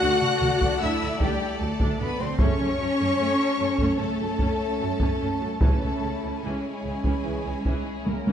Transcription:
0.00 0.10 D2 medium
0.00 2.39 A3 loud
0.00 0.20 A3 medium
0.00 0.21 D4 medium
0.00 0.77 F#4 medium
0.00 0.81 F#4 loud
0.00 2.39 A4 loud
0.00 2.39 D5 medium
0.00 0.82 F#5 loud
0.00 0.78 F#6 loud
0.22 taiko mid soft
0.42 0.50 D2 medium
0.42 0.50 F#3 medium
0.42 0.50 A3 medium
0.42 taiko mid medium
0.61 0.69 D2 medium
0.61 0.80 A3 medium
0.61 0.80 D4 medium
0.61 taiko medium
0.81 0.90 D2 medium
0.81 1.09 D3 medium
0.81 1.10 A3 medium
0.81 0.90 A3 soft
0.81 0.90 D4 medium
0.81 1.21 E4 medium
0.81 1.20 E4 medium
0.81 1.21 E5 medium
0.81 1.21 E6 medium
1.02 1.09 D2 soft
1.02 1.09 F#3 medium
1.02 1.10 A3 medium
1.20 1.28 D2 medium
1.20 1.60 G3 medium
1.20 1.61 G3 medium
1.20 1.40 A3 medium
1.20 1.40 D4 medium
1.20 1.60 G4 medium
1.20 1.60 G5 medium
1.20 taiko medium
1.60 1.68 D2 soft
1.60 1.69 F#3 medium
1.60 2.00 A3 medium
1.60 1.69 A3 medium
1.60 2.00 A3 medium
1.60 1.99 A4 medium
1.60 2.00 A5 medium
1.80 1.88 D2 medium
1.80 1.98 A3 medium
1.80 1.98 D4 medium
1.80 taiko medium
2.00 2.08 D2 medium
2.00 2.08 A3 medium
2.00 2.19 B3 medium
2.00 2.20 B3 medium
2.00 2.08 D4 medium
2.00 2.20 B4 medium
2.00 2.19 B5 medium
2.19 2.28 D2 soft
2.19 2.28 F#3 soft
2.19 2.28 A3 medium
2.19 2.38 C4 medium
2.19 2.39 C4 medium
2.19 2.40 C5 medium
2.19 2.40 C6 medium
2.39 2.47 F#2 medium
2.39 2.68 C#3 medium
2.39 2.58 A3 medium
2.39 2.68 A3 medium
2.39 3.98 C#4 medium
2.39 2.58 C#4 medium
2.39 3.99 C#4 medium
2.39 8.32 C#4 medium
2.39 5.57 A4 medium
2.39 5.62 C#5 medium
2.39 3.99 C#5 medium
2.39 3.99 C#6 medium
2.39 taiko medium
2.59 2.68 F#2 medium
2.59 2.67 A3 soft
2.59 2.67 C#4 soft
2.79 2.87 F#2 soft
2.79 2.87 F#3 soft
2.79 2.87 A3 soft
2.98 3.06 F#2 soft
2.98 3.08 A3 soft
2.98 3.08 C#4 soft
3.19 3.26 F#2 medium
3.19 3.37 A3 medium
3.19 3.37 C#4 medium
3.59 3.67 F#2 soft
3.59 3.67 F#3 soft
3.59 3.67 A3 soft
3.78 3.86 F#2 medium
3.78 3.98 A3 medium
3.78 3.98 C#4 medium
3.78 taiko medium
3.98 4.06 F#2 soft
3.98 4.28 C#3 soft
3.98 5.57 A3 medium
3.98 4.28 A3 medium
3.98 5.44 A3 medium
3.98 4.08 A3 soft
3.98 4.08 C#4 soft
3.98 5.60 A4 medium
3.98 5.58 A5 medium
4.19 4.27 F#2 soft
4.19 4.29 F#3 soft
4.19 4.29 A3 soft
4.39 4.47 F#2 medium
4.39 4.59 A3 medium
4.39 4.59 C#4 medium
4.39 taiko medium
4.80 4.88 F#2 soft
4.80 4.89 F#3 soft
4.80 4.89 A3 soft
4.99 5.07 F#2 medium
4.99 5.19 A3 medium
4.99 5.19 C#4 medium
4.99 taiko medium
5.21 5.29 F#2 soft
5.21 5.29 A3 soft
5.21 5.29 C#4 soft
5.41 5.49 F#2 soft
5.41 5.49 F#3 soft
5.41 5.49 A3 soft
5.61 5.69 C#2 medium
5.61 5.91 C#3 soft
5.61 5.91 E3 soft
5.61 5.80 E3 soft
5.61 6.41 A3 medium
5.61 5.80 C#4 medium
5.61 8.32 E4 medium
5.61 6.41 A4 medium
5.61 8.32 C#5 medium
5.61 6.41 A5 medium
5.61 taiko medium
5.82 5.90 C#2 soft
5.82 5.90 E3 soft
5.82 5.91 C#4 soft
6.02 6.10 C#2 soft
6.02 6.11 C#3 soft
6.02 6.11 G#3 soft
6.24 6.31 C#2 soft
6.24 6.32 E3 soft
6.24 6.32 C#4 soft
6.43 6.52 C#2 medium
6.43 6.63 E3 soft
6.43 8.32 G#3 soft
6.43 7.64 G#3 soft
6.43 6.63 C#4 soft
6.43 7.63 G#4 soft
6.43 8.32 G#5 medium
6.84 6.92 C#2 soft
6.84 6.93 C#3 soft
6.84 6.93 G#3 soft
7.04 7.12 C#2 soft
7.04 7.24 E3 soft
7.04 7.24 C#4 soft
7.04 taiko medium
7.22 7.33 C#2 soft
7.22 7.54 C#3 soft
7.22 7.53 E3 soft
7.22 7.33 E3 soft
7.22 7.33 C#4 soft
7.46 7.54 C#2 soft
7.46 7.54 C#3 soft
7.46 7.54 G#3 soft
7.65 7.74 C#2 soft
7.65 7.85 E3 soft
7.65 8.04 G#3 medium
7.65 7.85 C#4 soft
7.65 8.04 G#4 medium
7.65 taiko medium
8.06 8.15 C#2 soft
8.06 8.14 C#3 soft
8.06 8.14 G#3 soft
8.06 8.32 A#3 medium
8.06 8.32 A#4 medium
8.06 taiko high medium
8.26 8.32 C#2 soft
8.26 8.32 E3 medium
8.26 8.32 C#4 soft
8.26 taiko high medium

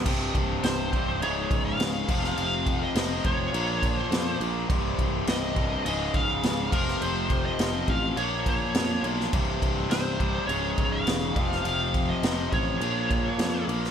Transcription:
0.03 0.29 C1 medium
0.03 0.90 C2 medium
0.03 0.91 G2 medium
0.03 0.91 C3 loud
0.03 kick loud
0.03 crash loud
0.03 crash medium
0.35 0.58 C1 medium
0.35 kick medium
0.35 crash medium
0.64 1.22 C1 medium
0.64 1.18 C5 medium
0.64 snare loud
0.64 crash medium
0.92 1.20 C2 medium
0.92 1.20 G2 medium
0.92 1.20 C3 medium
0.92 kick medium
0.92 crash medium
1.20 1.45 C#1 medium
1.20 2.06 C#2 medium
1.20 2.07 G#2 loud
1.20 2.08 C#3 loud
1.20 1.67 C#5 loud
1.20 crash medium
1.51 1.74 C#1 medium
1.51 kick medium
1.51 crash medium
1.65 2.36 F5 loud
1.78 2.02 C#1 medium
1.78 snare loud
1.78 crash medium
2.08 2.32 F1 medium
2.08 2.93 F2 medium
2.08 2.94 C3 medium
2.08 2.95 F3 loud
2.08 kick loud
2.08 crash loud
2.24 snare soft
2.37 2.84 F1 loud
2.37 2.78 F5 medium
2.37 crash medium
2.66 kick medium
2.66 crash medium
2.83 3.23 D#5 medium
2.94 3.19 F1 medium
2.94 3.51 F2 medium
2.94 3.52 C3 medium
2.94 3.52 F3 medium
2.94 snare loud
2.94 crash medium
3.24 3.48 F1 medium
3.24 4.00 C#5 medium
3.24 kick medium
3.24 crash medium
3.52 4.00 A#1 medium
3.52 4.38 A#2 loud
3.52 4.39 F3 loud
3.52 4.39 A#3 loud
3.52 crash medium
3.83 kick medium
3.83 crash medium
4.00 4.37 C5 medium
4.11 4.35 F2 medium
4.11 snare loud
4.11 crash medium
4.40 4.64 A#1 medium
4.40 4.68 A#2 medium
4.40 4.68 F3 medium
4.40 4.67 A#3 medium
4.40 crash medium
4.69 4.93 C1 medium
4.69 5.54 C2 medium
4.69 5.55 G2 loud
4.69 5.55 C3 loud
4.69 kick loud
4.69 crash medium
4.99 5.22 C1 medium
4.99 kick medium
4.99 crash medium
5.27 5.75 C1 medium
5.27 5.82 D#5 loud
5.27 snare loud
5.27 crash medium
5.56 5.84 C2 medium
5.56 5.84 G2 medium
5.56 5.84 C3 medium
5.56 kick medium
5.56 crash medium
5.84 6.09 C#1 medium
5.84 6.70 C#2 medium
5.84 6.71 G#2 loud
5.84 6.72 C#3 loud
5.84 6.15 D#5 loud
5.84 crash medium
6.14 6.38 C#1 medium
6.14 6.74 F5 loud
6.14 kick medium
6.14 crash medium
6.43 6.67 C#1 medium
6.43 snare loud
6.43 crash medium
6.71 6.96 F1 medium
6.71 7.57 F2 medium
6.71 7.58 C3 loud
6.71 7.58 F3 medium
6.71 7.03 A#4 medium
6.71 kick loud
6.71 crash loud
6.88 snare soft
7.01 7.49 F1 loud
7.01 7.46 C5 medium
7.01 crash medium
7.30 kick medium
7.30 crash medium
7.46 7.90 D#5 medium
7.58 7.83 F1 medium
7.58 8.15 F2 medium
7.58 8.16 C3 medium
7.58 8.17 F3 medium
7.58 snare loud
7.58 crash medium
7.88 8.12 A1 medium
7.88 8.16 F5 medium
7.88 kick medium
7.88 crash medium
8.17 8.64 A#1 medium
8.17 9.02 A#2 medium
8.17 9.03 F3 medium
8.17 9.03 A#3 loud
8.17 8.44 C#5 medium
8.17 crash medium
8.46 9.01 C#5 medium
8.46 kick medium
8.46 crash medium
8.75 8.98 F2 medium
8.75 snare loud
8.75 crash medium
9.03 9.27 B1 medium
9.03 9.32 F3 medium
9.03 9.32 A#3 medium
9.03 crash medium
9.07 9.32 A#2 medium
9.20 snare soft
9.32 9.57 C1 medium
9.32 10.18 C2 medium
9.32 10.19 G2 medium
9.32 10.18 C3 loud
9.32 kick loud
9.32 crash medium
9.62 9.86 C1 medium
9.62 kick medium
9.62 crash medium
9.90 10.38 C1 medium
9.90 10.47 C5 medium
9.90 snare loud
9.90 crash medium
10.19 10.48 C2 medium
10.19 10.48 G2 medium
10.19 10.47 C3 medium
10.19 kick medium
10.19 crash medium
10.47 10.73 C#1 medium
10.47 11.34 C#2 medium
10.47 11.35 G#2 loud
10.47 10.93 C#5 medium
10.47 crash medium
10.51 11.35 C#3 loud
10.78 11.02 C#1 medium
10.78 kick medium
10.78 crash medium
10.92 11.64 F5 loud
11.07 11.31 E1 medium
11.07 snare loud
11.07 crash medium
11.35 11.60 F1 medium
11.35 12.21 F2 medium
11.35 12.22 C3 medium
11.35 12.23 F3 loud
11.35 kick loud
11.35 crash medium
11.52 snare soft
11.65 12.12 F1 loud
11.65 12.10 F5 loud
11.65 crash medium
11.94 kick medium
11.94 crash medium
12.09 12.53 D#5 medium
12.23 12.47 F1 medium
12.23 12.79 F2 medium
12.23 12.80 C3 medium
12.23 12.81 F3 medium
12.23 snare loud
12.23 crash medium
12.52 12.76 A1 medium
12.52 13.65 C#5 medium
12.52 kick medium
12.52 crash medium
12.81 13.28 A#1 loud
12.81 13.67 A#2 medium
12.81 13.67 F3 loud
12.81 13.67 A#3 loud
12.81 crash medium
13.10 kick medium
13.10 crash medium
13.38 13.62 F2 medium
13.38 snare loud
13.38 crash medium
13.68 13.91 A#1 medium
13.68 13.91 A#2 medium
13.68 13.91 F3 medium
13.68 13.91 A#3 medium
13.68 crash medium
13.84 snare soft

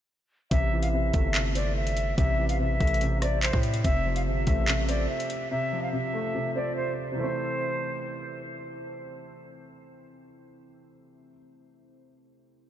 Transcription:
0.51 1.11 A1 loud
0.51 0.92 C3 loud
0.51 0.80 E5 loud
0.51 kick loud
0.51 closed hi-hat medium
0.73 1.77 E3 medium
0.82 0.91 F5 medium
0.82 closed hi-hat medium
0.93 1.33 C3 medium
0.93 1.52 E5 medium
1.14 2.14 G1 loud
1.14 2.18 A3 medium
1.14 kick medium
1.14 closed hi-hat medium
1.34 2.16 C3 medium
1.34 clap loud
1.34 closed hi-hat medium
1.55 2.59 C4 medium
1.55 1.73 D5 medium
1.55 closed hi-hat medium
1.77 2.16 E5 medium
1.87 closed hi-hat medium
1.97 closed hi-hat medium
2.17 2.78 A1 loud
2.17 2.58 C3 loud
2.17 2.47 E5 loud
2.17 kick loud
2.17 closed hi-hat medium
2.39 3.43 E3 medium
2.49 2.58 F5 medium
2.49 closed hi-hat medium
2.60 3.00 C3 medium
2.60 3.19 E5 loud
2.80 3.50 A1 loud
2.80 3.85 A3 medium
2.80 kick medium
2.80 closed hi-hat soft
2.87 closed hi-hat medium
2.94 closed hi-hat medium
3.01 3.83 C3 medium
3.01 closed hi-hat medium
3.22 3.85 C4 medium
3.22 3.39 D5 medium
3.22 cross-stick loud
3.22 closed hi-hat medium
3.42 3.60 C5 medium
3.42 clap loud
3.42 closed hi-hat medium
3.53 3.83 A2 loud
3.53 kick loud
3.53 cross-stick medium
3.63 closed hi-hat medium
3.74 closed hi-hat medium
3.84 4.28 F1 loud
3.84 4.25 C3 loud
3.84 4.14 E5 loud
3.84 kick loud
3.84 closed hi-hat medium
4.06 5.10 F3 medium
4.16 4.25 F5 medium
4.16 closed hi-hat medium
4.26 4.46 G1 loud
4.26 4.66 C3 medium
4.26 4.85 E5 medium
4.47 5.07 A1 loud
4.47 5.52 A3 medium
4.47 kick medium
4.47 closed hi-hat medium
4.68 5.50 C3 medium
4.68 clap loud
4.68 closed hi-hat medium
4.88 5.93 C4 medium
4.88 5.06 D5 medium
4.88 closed hi-hat medium
5.09 5.49 E5 medium
5.20 closed hi-hat medium
5.30 closed hi-hat medium
5.51 5.91 C3 loud
5.51 5.80 E5 loud
5.72 6.76 F3 medium
5.83 5.91 F5 medium
5.93 6.33 C3 medium
5.93 6.52 E5 loud
6.14 7.18 A3 medium
6.35 7.10 C3 medium
6.56 7.18 C4 medium
6.56 6.73 D5 medium
6.76 6.93 C5 medium
7.12 11.25 C3 medium
7.16 11.29 E3 medium
7.16 11.33 A3 medium
7.16 8.39 C5 loud
7.24 11.37 C4 loud

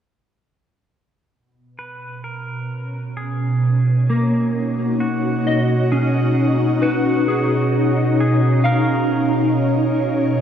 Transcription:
1.33 10.41 B2 medium
1.79 2.24 B4 medium
1.96 10.41 C#4 medium
2.24 3.16 A#4 medium
2.45 10.41 C#5 medium
3.17 5.06 G#4 medium
3.28 10.41 D#4 medium
3.63 9.43 F#4 medium
4.10 6.10 A#3 medium
5.00 5.91 F#4 medium
5.47 7.01 D#5 soft
5.92 8.04 C#4 medium
5.92 6.82 G#4 medium
6.82 8.23 F#4 medium
6.82 7.69 B4 medium
7.28 9.40 G#4 soft
8.20 8.66 G#4 medium
8.64 10.41 A#4 medium
8.64 10.41 F5 medium
9.16 10.41 G#4 medium

